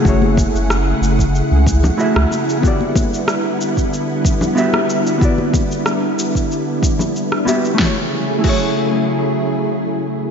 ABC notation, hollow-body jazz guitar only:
X:1
M:4/4
L:1/8
Q:"Swing 16ths" 1/4=93
K:Edor
V:1 name="Hollow-body jazz guitar"
[A,EF^Gc]6 [A,EFGe]2 | [B,EFGd]6 [B,EFGe]2 | [B,EFGd]6 z [B,EFGe] | [A,EF^Gc] z [A,EFGc]6 |]